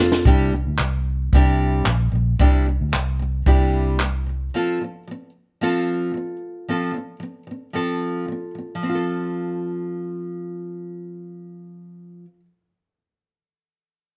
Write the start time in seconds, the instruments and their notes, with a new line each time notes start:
Already playing: fingered electric bass F1, nylon-string guitar A4
0.00 nylon-string guitar C4 F4
0.12 snare
0.25 fingered electric bass C2, nylon-string guitar C3 G3 D4 E4 G4, kick
0.53 nylon-string guitar C3 G3
0.67 fingered electric bass D2
0.78 fingered electric bass C2, nylon-string guitar C3, clap
0.83 nylon-string guitar G3
1.33 fingered electric bass C2, nylon-string guitar C3 G3 D4 E4 G4, kick
1.86 fingered electric bass A#1, nylon-string guitar C3 G3, clap
2.12 fingered electric bass A#1, nylon-string guitar C3 G3
2.39 fingered electric bass C2, nylon-string guitar C3 G3 D4 E4 G4, kick
2.66 nylon-string guitar C3 G3
2.81 fingered electric bass D2
2.92 fingered electric bass C2, nylon-string guitar C3 G3, clap
3.19 nylon-string guitar C3 G3
3.46 fingered electric bass C2, nylon-string guitar C3 G3 D4 E4 G4, kick
4.00 nylon-string guitar C3 G3, clap
4.26 nylon-string guitar C3 G3
4.54 nylon-string guitar F3 C4 F4 A4
4.81 nylon-string guitar F3 C4
5.07 nylon-string guitar F3 C4
5.61 nylon-string guitar F3 C4 F4 A4
6.14 nylon-string guitar F3 C4
6.68 nylon-string guitar F3 C4 F4 A4
6.94 nylon-string guitar F3
7.20 nylon-string guitar F3 C4
7.47 nylon-string guitar F3 C4
7.73 nylon-string guitar F3 C4 F4 A4
8.28 nylon-string guitar F3 C4
8.55 nylon-string guitar F3 C4
8.75 nylon-string guitar F3
8.83 nylon-string guitar C4
8.89 nylon-string guitar F4
8.95 nylon-string guitar A4